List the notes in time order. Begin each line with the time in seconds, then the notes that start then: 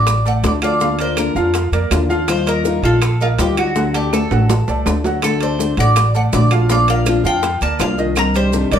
Already playing: A1 F#3 F#4 D5 F#5
0.07 muted nylon-string guitar stroke, high bongo, high timbale, claves, maracas
0.25 A3 A4 D5 F#5, high bongo, maracas
0.43 D2 D3 A3 D4 F#4 D5, high bongo, low bongo, high timbale, low timbale, maracas
0.62 F3 A3 D4 F4 F#4 D5 F5, high bongo, high timbale, claves, maracas
0.81 D3 F3 A#3 D4 F4 F5, high bongo, maracas
0.99 A#3 A#4 C5 D5, high timbale, maracas
1.17 D3 A#3 D4 F4 A#4, high bongo, high timbale, low timbale, claves, maracas
1.35 F2 F3 A#3 D4 F4 F5, high bongo, maracas
1.54 muted nylon-string guitar stroke, high bongo, high timbale, maracas
1.71 F2 A#3 A#4 D5, high bongo, high timbale, maracas
1.91 D#2 D3 A#3 D4 F4, high bongo, low bongo, high timbale, low timbale, claves, maracas
2.09 F3 A#3 D4 F4 F5, high bongo, maracas
2.28 D#3 G3 D#4 F4 C5, high bongo, high timbale, claves, maracas
2.46 A#3 A#4 D#5, high bongo, high timbale, maracas
2.65 D#3 G3 D#4 F4, high bongo, low timbale, maracas
2.82 A#1 F3 G3 D#4 F4 A4 F5, high timbale, maracas
3.02 muted nylon-string guitar stroke, high bongo, high timbale, claves, maracas
3.21 A#3 F4 A#4 D#5, high bongo, maracas
3.38 D2 D#3 G3 D#4 F4 G4, high bongo, low bongo, high timbale, low timbale, maracas
3.57 F#3 G3 D#4 F4 F#4 F#5, high bongo, high timbale, claves, maracas
3.75 D3 F#3 A3 D4 F#4 F#5, high bongo, maracas
3.94 A3 G4 A4 D5, high timbale, maracas
4.12 D3 A3 D4 F#4 A4, high bongo, high timbale, claves, maracas
4.31 A1 F#3 A3 D4 F#4 F#5, high bongo, high timbale, maracas
4.50 high bongo, low timbale, maracas
4.68 C2 A3 A4 D5, high bongo, low timbale, maracas
4.86 D2 D3 A3 D4 F#4, high bongo, low bongo, low timbale, claves, maracas
5.04 F#3 A3 D4 F#4 F#5, high bongo, low timbale, maracas
5.22 D3 A3 D4 F#4 A4, high bongo, high timbale, claves, maracas
5.41 A3 A4 C5 D5, high bongo, high timbale, maracas
5.59 D3 A3 D4 F#4, high bongo, low timbale, maracas
5.77 A1 F#3 A3 D4 F#4 D5 F#5, high timbale, maracas
5.96 muted nylon-string guitar stroke, high bongo, high timbale, claves, maracas
6.14 A3 A4 D5 F#5, high bongo, maracas
6.33 A#1 D3 A3 D4 F#4 D5, high bongo, low bongo, high timbale, low timbale, maracas
6.51 F3 A3 D4 F4 F#4 F5, high bongo, high timbale, claves, maracas
6.69 F3 A#3 D4 F4 D5 F5, high bongo, maracas
6.88 A#3 A#4 D5 F5, high timbale, maracas
7.06 F3 A#3 D4 F4, high bongo, high timbale, low timbale, claves, maracas
7.24 F2 F3 A#3 D4 F4 F5 G5, high bongo, maracas
7.43 muted nylon-string guitar stroke, high bongo, high timbale, maracas
7.61 D2 A#3 A#4 D5 A5, high bongo, high timbale, maracas
7.79 C2 F3 A#3 D4 F4 F5, high bongo, low bongo, high timbale, low timbale, claves, maracas
7.98 D#3 A#3 D4 F4 D#5, high bongo, maracas
8.16 C3 D#3 G3 D4 G4 A#4, high bongo, high timbale, claves, maracas
8.35 G3 G4 C5, high bongo, high timbale, maracas
8.53 C3 D#3 G3 D4 G4, high bongo, low timbale, maracas
8.71 C2 D#3 G3 D4 D#4 G4 D5, high timbale, maracas